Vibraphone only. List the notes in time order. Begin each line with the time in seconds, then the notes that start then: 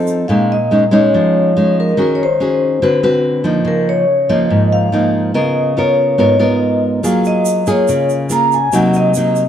0.28 F5
0.52 D#5
0.93 C#5
1.80 A#4
2.02 A#4
2.15 C#5
2.23 C5
3.68 A#4
3.89 C#5
4.30 D#5
4.73 F5
5.35 D#5
5.78 C#5
6.20 C#5
6.43 D#5
7.06 F5
7.27 D#5
7.70 C#5
8.32 A#5
8.54 G#5
8.75 F#5
8.97 D#5